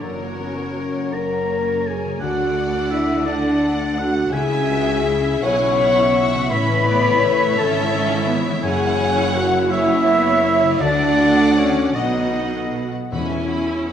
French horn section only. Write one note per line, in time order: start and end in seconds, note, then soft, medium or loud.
0.00 1.13 C#4 medium
1.13 1.86 A#4 loud
1.87 2.22 G#4 medium
2.22 2.91 F#4 loud
2.90 3.26 E4 loud
3.28 3.98 D4 loud
3.98 4.33 F#4 loud
4.32 5.44 G#4 loud
5.44 6.32 C#5 loud
6.49 7.54 B4 loud
7.58 8.29 A4 loud
8.64 9.31 G#4 loud
9.35 9.71 F#4 loud
9.70 10.81 E4 loud
10.80 11.57 D4 loud
11.57 11.96 C#4 loud
11.95 13.11 D#4 loud